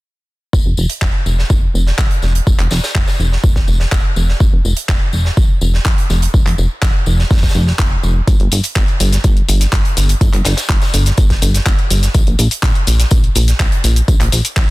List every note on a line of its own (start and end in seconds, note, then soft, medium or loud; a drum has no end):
0.53 0.62 F1 medium
0.53 kick loud
0.53 tambourine medium
0.66 0.74 F1 medium
0.77 0.86 F1 medium
0.77 tambourine medium
0.89 closed hi-hat soft
1.02 1.11 F1 medium
1.02 kick loud
1.02 snare loud
1.02 clap loud
1.02 tambourine medium
1.26 1.44 F1 medium
1.26 tambourine medium
1.39 snare soft
1.50 1.68 F1 medium
1.50 kick loud
1.50 tambourine medium
1.74 1.92 F1 medium
1.74 tambourine medium
1.87 snare soft
1.98 2.07 F1 medium
1.98 kick loud
1.98 snare loud
1.98 clap loud
1.98 tambourine medium
2.11 closed hi-hat soft
2.22 2.40 F1 medium
2.22 snare soft
2.22 tambourine medium
2.35 closed hi-hat soft
2.47 2.56 F1 medium
2.47 kick loud
2.47 tambourine medium
2.59 2.68 F1 medium
2.59 clap soft
2.59 closed hi-hat soft
2.71 2.80 F1 medium
2.71 snare medium
2.71 tambourine medium
2.84 snare medium
2.84 tambourine medium
2.95 3.04 F1 medium
2.95 kick loud
2.95 clap loud
3.08 snare loud
3.08 tambourine medium
3.19 3.37 F1 medium
3.19 tambourine medium
3.32 snare soft
3.44 3.61 F1 medium
3.44 kick loud
3.44 tambourine medium
3.55 kick medium
3.55 snare medium
3.68 3.86 F1 loud
3.68 tambourine medium
3.80 snare medium
3.92 4.01 F1 medium
3.92 kick loud
3.92 snare loud
3.92 clap loud
3.92 tambourine medium
4.16 4.34 F1 medium
4.16 tambourine medium
4.29 snare soft
4.40 4.49 F1 medium
4.40 kick loud
4.40 tambourine medium
4.53 4.61 F1 medium
4.65 4.74 F1 medium
4.65 tambourine medium
4.77 closed hi-hat soft
4.88 4.98 F1 medium
4.88 kick loud
4.88 snare loud
4.88 clap loud
4.88 tambourine medium
5.13 5.31 F1 medium
5.13 tambourine medium
5.25 snare soft
5.37 5.55 F1 medium
5.37 kick loud
5.37 tambourine medium
5.61 5.79 F1 loud
5.61 tambourine medium
5.74 snare soft
5.85 5.95 F1 medium
5.85 kick loud
5.85 snare loud
5.85 clap loud
5.85 tambourine medium
5.98 closed hi-hat soft
6.10 6.28 F1 loud
6.10 snare soft
6.10 tambourine medium
6.22 closed hi-hat soft
6.34 6.43 F1 loud
6.34 kick loud
6.34 tambourine medium
6.46 6.55 F1 medium
6.46 clap soft
6.46 closed hi-hat soft
6.58 6.67 F1 medium
6.58 tambourine medium
6.82 6.91 F1 medium
6.82 kick loud
6.82 snare loud
6.82 clap loud
6.82 tambourine medium
7.06 7.24 F1 medium
7.06 tambourine medium
7.19 snare soft
7.31 7.48 F1 medium
7.31 kick loud
7.31 snare medium
7.31 tambourine medium
7.37 snare medium
7.37 tambourine medium
7.43 kick medium
7.43 snare medium
7.43 tambourine medium
7.49 snare medium
7.49 tambourine medium
7.55 7.73 F1 loud
7.55 tambourine medium
7.67 snare soft
7.79 7.97 F1 medium
7.79 kick loud
7.79 snare loud
7.79 clap loud
7.79 tambourine medium
8.03 8.21 F1 medium
8.03 tambourine medium
8.27 8.36 G1 loud
8.27 kick loud
8.27 closed hi-hat soft
8.27 tambourine medium
8.27 shaker soft
8.40 8.48 G1 medium
8.40 closed hi-hat soft
8.52 8.61 G1 medium
8.52 open hi-hat medium
8.52 tambourine medium
8.52 shaker medium
8.63 closed hi-hat soft
8.63 shaker soft
8.75 8.85 G1 medium
8.75 kick loud
8.75 snare loud
8.75 clap loud
8.75 closed hi-hat soft
8.75 tambourine medium
8.75 shaker soft
8.88 closed hi-hat soft
9.00 9.18 G1 medium
9.00 open hi-hat loud
9.00 tambourine medium
9.00 shaker medium
9.13 snare medium
9.13 closed hi-hat soft
9.13 shaker soft
9.24 9.42 G1 medium
9.24 kick loud
9.24 closed hi-hat soft
9.24 tambourine medium
9.24 shaker soft
9.37 closed hi-hat soft
9.48 9.66 G1 medium
9.48 open hi-hat loud
9.48 tambourine medium
9.48 shaker medium
9.60 snare soft
9.60 closed hi-hat soft
9.60 shaker soft
9.72 9.82 G1 medium
9.72 kick loud
9.72 snare loud
9.72 clap loud
9.72 closed hi-hat soft
9.72 tambourine medium
9.72 shaker soft
9.85 closed hi-hat soft
9.97 10.15 G1 medium
9.97 snare soft
9.97 open hi-hat loud
9.97 tambourine medium
9.97 shaker medium
10.09 closed hi-hat soft
10.09 shaker soft
10.21 10.30 G1 loud
10.21 kick loud
10.21 closed hi-hat soft
10.21 tambourine medium
10.21 shaker soft
10.33 10.42 G1 medium
10.33 clap soft
10.33 closed hi-hat soft
10.45 10.54 G1 loud
10.45 snare loud
10.45 open hi-hat medium
10.45 tambourine medium
10.45 shaker medium
10.57 snare loud
10.57 closed hi-hat soft
10.57 tambourine medium
10.57 shaker soft
10.69 10.78 G1 medium
10.69 kick loud
10.69 snare loud
10.69 clap loud
10.69 closed hi-hat soft
10.69 tambourine medium
10.81 snare loud
10.81 closed hi-hat soft
10.81 tambourine medium
10.94 11.11 G1 medium
10.94 open hi-hat loud
10.94 tambourine medium
10.94 shaker medium
11.06 snare soft
11.06 closed hi-hat soft
11.06 shaker soft
11.17 11.36 G1 medium
11.17 kick loud
11.17 closed hi-hat soft
11.17 tambourine medium
11.17 shaker soft
11.30 kick medium
11.30 snare medium
11.30 closed hi-hat soft
11.42 11.60 G1 medium
11.42 open hi-hat loud
11.42 tambourine medium
11.42 shaker medium
11.54 snare medium
11.54 closed hi-hat soft
11.54 shaker soft
11.66 11.75 G1 medium
11.66 kick loud
11.66 snare loud
11.66 clap loud
11.66 closed hi-hat soft
11.66 tambourine medium
11.66 shaker soft
11.79 closed hi-hat soft
11.90 12.08 G1 loud
11.90 open hi-hat loud
11.90 tambourine medium
11.90 shaker medium
12.03 snare soft
12.03 closed hi-hat soft
12.03 shaker soft
12.14 12.24 A#1 loud
12.14 kick loud
12.14 closed hi-hat medium
12.14 tambourine medium
12.14 shaker soft
12.27 12.36 A#1 medium
12.27 closed hi-hat soft
12.39 12.48 A#1 loud
12.39 open hi-hat medium
12.39 tambourine medium
12.39 shaker medium
12.51 closed hi-hat medium
12.51 closed hi-hat soft
12.51 shaker soft
12.63 12.72 A#1 medium
12.63 kick loud
12.63 snare loud
12.63 clap loud
12.63 closed hi-hat medium
12.63 tambourine medium
12.63 shaker soft
12.75 closed hi-hat soft
12.87 13.05 A#1 medium
12.87 open hi-hat loud
12.87 tambourine medium
12.87 shaker medium
12.99 snare soft
12.99 closed hi-hat medium
12.99 shaker soft
13.11 13.29 A#1 medium
13.11 kick loud
13.11 closed hi-hat medium
13.11 tambourine medium
13.11 shaker soft
13.24 closed hi-hat soft
13.35 13.53 A#1 loud
13.35 open hi-hat loud
13.35 tambourine medium
13.35 shaker medium
13.48 snare soft
13.48 closed hi-hat medium
13.48 shaker soft
13.59 13.69 A#1 medium
13.59 kick loud
13.59 snare loud
13.59 clap loud
13.59 closed hi-hat medium
13.59 tambourine medium
13.59 shaker soft
13.72 closed hi-hat soft
13.84 14.02 A#1 loud
13.84 open hi-hat loud
13.84 tambourine medium
13.84 shaker medium
13.96 closed hi-hat soft
13.96 shaker soft
14.08 14.17 A#1 loud
14.08 kick loud
14.08 closed hi-hat medium
14.08 tambourine medium
14.08 shaker soft
14.20 14.29 A#1 medium
14.20 clap soft
14.20 closed hi-hat soft
14.32 14.41 A#1 medium
14.32 open hi-hat loud
14.32 tambourine medium
14.32 shaker medium
14.45 closed hi-hat medium
14.45 shaker soft
14.56 14.66 A#1 medium
14.56 kick loud
14.56 snare loud
14.56 clap loud
14.56 closed hi-hat medium
14.56 tambourine medium
14.56 shaker soft